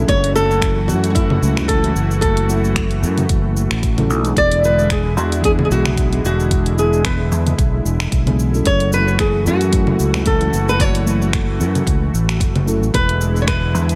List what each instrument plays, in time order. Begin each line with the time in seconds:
Already playing: fm electric piano F#3 A3 C#4 E4
0.00 fm electric piano A4
0.08 fingered electric bass F#1, analog synth pad E3 A3 F#4, nylon-string guitar C#5, kick, closed hi-hat, cabasa
0.24 closed hi-hat
0.35 nylon-string guitar A4, cabasa
0.51 cabasa
0.62 finger snap, kick, closed hi-hat, cabasa
0.88 fingered electric bass F#2, nylon-string guitar F#4, cabasa
1.04 closed hi-hat, cabasa
1.10 fm electric piano F#3 A3, nylon-string guitar F#4
1.15 fm electric piano C#4 E4 A4, nylon-string guitar E4, kick, closed hi-hat, cabasa
1.30 low conga
1.42 fingered electric bass C#2, cabasa
1.57 finger snap, low conga, cabasa
1.68 nylon-string guitar A4, kick, closed hi-hat, cabasa
1.82 fm electric piano F#3 A3 C#4 E4 A4, closed hi-hat
1.96 fingered electric bass F#1, cabasa
2.11 cabasa
2.21 nylon-string guitar A4, kick, closed hi-hat, cabasa
2.37 closed hi-hat
2.47 fm electric piano F#3 A3 C#4 E4 A4, cabasa
2.64 cabasa
2.76 finger snap, kick, closed hi-hat, cabasa
2.91 closed hi-hat
3.03 fingered electric bass F#2, cabasa
3.18 closed hi-hat, low conga, cabasa
3.29 fingered electric bass F#1, kick, closed hi-hat, cabasa
3.57 cabasa
3.71 fingered electric bass A1, finger snap, cabasa
3.83 kick, closed hi-hat, cabasa
3.96 fm electric piano F#3 A3 C#4 E4 A4, closed hi-hat, low conga
4.10 fingered electric bass B1, cabasa
4.21 fm electric piano E3 G#3 B3, closed hi-hat, cabasa
4.26 fm electric piano D4 G#4
4.36 fingered electric bass E1, analog synth pad D3 G#3 E4, nylon-string guitar D5, kick, closed hi-hat, cabasa
4.52 closed hi-hat
4.64 nylon-string guitar B4, cabasa
4.79 cabasa
4.90 nylon-string guitar G#4, finger snap, kick, closed hi-hat, cabasa
5.17 fingered electric bass E2, nylon-string guitar F#4, cabasa
5.32 closed hi-hat, cabasa
5.41 fm electric piano E3 G#3 B3, kick, closed hi-hat
5.45 fm electric piano D4 G#4, nylon-string guitar G#4, cabasa
5.59 low conga
5.65 nylon-string guitar G#4
5.70 fingered electric bass B1, nylon-string guitar F#4, cabasa
5.85 finger snap, low conga, cabasa
5.97 kick, closed hi-hat, cabasa
6.11 fm electric piano E3 G#3 B3 D4 G#4, closed hi-hat
6.24 fingered electric bass E1, nylon-string guitar F#4, cabasa
6.40 cabasa
6.51 kick, closed hi-hat, cabasa
6.66 closed hi-hat
6.76 fm electric piano E3 G#3 B3 D4 G#4, nylon-string guitar G#4, cabasa
6.93 cabasa
7.03 fm electric piano E3 D4, nylon-string guitar B4, finger snap, kick, closed hi-hat, cabasa
7.32 fingered electric bass E2, cabasa
7.47 closed hi-hat, low conga, cabasa
7.58 fingered electric bass B1, kick, closed hi-hat, cabasa
7.85 fingered electric bass E1, cabasa
8.00 finger snap, cabasa
8.12 fingered electric bass B1, kick, closed hi-hat, cabasa
8.25 fm electric piano E3 G#3 B3 D4 G#4, closed hi-hat, low conga
8.39 cabasa
8.50 fm electric piano F#3 A3 C#4, cabasa
8.55 fm electric piano E4 A4
8.65 fingered electric bass F#1, analog synth pad E3 A3 F#4, nylon-string guitar C#5, kick, closed hi-hat, cabasa
8.80 closed hi-hat
8.92 nylon-string guitar B4, cabasa
9.08 cabasa
9.19 nylon-string guitar G#4, finger snap, kick, closed hi-hat, cabasa
9.46 fingered electric bass F#2, nylon-string guitar F#4, cabasa
9.61 closed hi-hat, cabasa
9.69 fm electric piano F#3 A3 C#4, kick, closed hi-hat
9.73 fm electric piano E4 A4, cabasa
9.87 low conga
9.99 fingered electric bass C#2, cabasa
10.14 finger snap, low conga, cabasa
10.26 nylon-string guitar A4, kick, closed hi-hat, cabasa
10.39 fm electric piano F#3 A3 C#4 E4 A4, closed hi-hat
10.53 fingered electric bass F#1, cabasa
10.69 nylon-string guitar B4, cabasa
10.80 nylon-string guitar C#5, kick, closed hi-hat, cabasa
10.95 closed hi-hat
11.05 fm electric piano F#3 A3 C#4 E4 A4, cabasa
11.22 cabasa
11.32 fm electric piano F#3 A3 C#4 E4 A4, finger snap, kick, closed hi-hat, cabasa
11.60 fingered electric bass F#2, cabasa
11.75 closed hi-hat, low conga, cabasa
11.87 fingered electric bass C#2, kick, closed hi-hat, cabasa
12.14 fingered electric bass A1, cabasa
12.29 finger snap, closed hi-hat, cabasa
12.40 fingered electric bass F#1, kick, closed hi-hat, cabasa
12.56 closed hi-hat, low conga
12.65 fm electric piano F#3 A3 C#4 E4 A4, cabasa
12.82 fingered electric bass A1, cabasa
12.94 fingered electric bass E1, analog synth pad D3 G#3 E4, nylon-string guitar B4, kick, closed hi-hat, cabasa
13.09 closed hi-hat
13.21 cabasa
13.36 cabasa
13.42 nylon-string guitar C#5
13.47 nylon-string guitar B4, finger snap, kick, closed hi-hat, cabasa
13.75 fingered electric bass E2, cabasa
13.89 closed hi-hat, cabasa